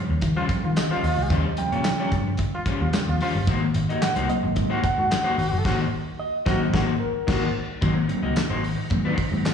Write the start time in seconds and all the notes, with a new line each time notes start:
Already playing: C3 C#3 F3 G3
0.09 D#2, muted clean electric guitar stroke
0.21 D#3, muted clean electric guitar stroke, kick, closed hi-hat
0.36 G3 C#4 F4 C5
0.49 C#3 F3 G3 C4, muted picked electric bass stroke, muted clean electric guitar stroke, kick, closed hi-hat
0.64 D#3 F4, muted clean electric guitar stroke
0.76 D#5, muted clean electric guitar stroke, snare, clap, closed hi-hat, tambourine
0.91 G3 C#4 F4 C5
1.03 D#2 F4 D#5, muted clean electric guitar stroke, open hi-hat
1.18 C#2, muted clean electric guitar stroke
1.30 D#2 G3 C#4 F4 C5, kick, closed hi-hat
1.46 muted clean electric guitar stroke
1.57 C#3 F3 G3 C4 G5, muted clean electric guitar stroke, closed hi-hat
1.72 A#2 G3 C#4 F4 C#5, closed hi-hat
1.84 muted clean electric guitar stroke, snare, clap, closed hi-hat, tambourine
2.00 G3 C#4 F4 C#5
2.12 G2, muted clean electric guitar stroke, kick, closed hi-hat
2.27 muted clean electric guitar stroke
2.37 muted clean electric guitar stroke, kick, closed hi-hat
2.55 F4, muted clean electric guitar stroke
2.66 G3 C#4 F4 C5, muted picked electric bass stroke, kick, closed hi-hat
2.81 D#2 F4, muted clean electric guitar stroke
2.93 C#3 F3 G3 C4, muted picked electric bass stroke, muted clean electric guitar stroke, snare, clap, closed hi-hat, tambourine
3.08 D#2 F4, muted clean electric guitar stroke
3.21 G3 C#4 F4 C5, open hi-hat
3.35 G1, muted clean electric guitar stroke
3.47 G#1 A#3 D#4 F#4 C5, kick, closed hi-hat
3.62 muted clean electric guitar stroke
3.74 G#1, muted clean electric guitar stroke, closed hi-hat
3.89 A#3 D#4 F#4 D#5, closed hi-hat
4.02 F#5, muted clean electric guitar stroke, snare, clap, closed hi-hat, tambourine
4.16 C2 A#3 D#4 F#4 C5, closed hi-hat
4.29 F#3 A#3 C4 D#5, muted clean electric guitar stroke, closed hi-hat
4.43 G#1, muted clean electric guitar stroke
4.56 G#2, muted clean electric guitar stroke, kick, closed hi-hat
4.70 A#3 D#4 F#4 C5
4.82 F#5, muted clean electric guitar stroke, muted picked electric bass stroke, kick, closed hi-hat
4.97 G#2 F#4, muted clean electric guitar stroke
5.10 muted clean electric guitar stroke, snare, clap, closed hi-hat, tambourine
5.24 A#3 D#4 F#4 C5
5.37 G#1 F#4, muted clean electric guitar stroke, open hi-hat
5.52 F#1, muted clean electric guitar stroke
5.65 G#1 A#3 D#4 F#4 C5, kick, snare, crash
6.20 D#5
6.46 G#1 F#3 A#3 C4 D#4 F#4 C5 D#5, kick, snare
6.73 G#1 A#3 D#4 F#4 C5, kick, snare
7.00 A#4
7.27 G#1 A#3 D#4 F#4 C5, kick, snare, crash
7.81 G#1 D#3 F#3 A#3 C4 D#4 F#4 C5 D#5 F#5 A#5, kick, closed hi-hat
7.95 muted clean electric guitar stroke
8.08 D#3 F#3 A#3 C4, muted clean electric guitar stroke, closed hi-hat
8.23 C2 A#3 D#4 F#4 D#5
8.36 muted picked electric bass stroke, snare, clap, closed hi-hat, tambourine
8.50 G#1 A#3 D#4 F#4 C5
8.63 A#3 C4, muted clean electric guitar stroke, open hi-hat
8.78 muted clean electric guitar stroke
8.90 G#2 D#3 F#3 A#3 C4, muted clean electric guitar stroke, kick, closed hi-hat
9.05 A#3 D#4 F#4 C5
9.18 muted clean electric guitar stroke, muted picked electric bass stroke, kick, open hi-hat
9.32 G#2 D#3 F#3 A#3 C4, muted clean electric guitar stroke
9.45 muted clean electric guitar stroke, snare, clap, closed hi-hat, tambourine